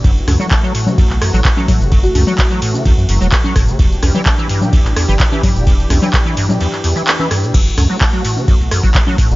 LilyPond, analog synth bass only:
\new Staff \with { instrumentName = "Analog synth bass" } { \clef bass \time 4/4 \key e \mixolydian \tempo 4 = 128 fis,,16 r16 cis,16 r4. b,,16 r16 a,,16 r8. fis,,16~ | fis,,8 cis,16 r4 r16 cis,16 fis,16 fis,,16 e,,16 r8 fis,,16 r16 | e,,16 r16 b,,16 r4. a,,16 r16 g,,16 r8. e,,16~ | e,,8 b,,16 r2. r16 |
fis,,16 r16 cis,16 r4. b,,16 r16 a,,16 r8. fis,,16 | }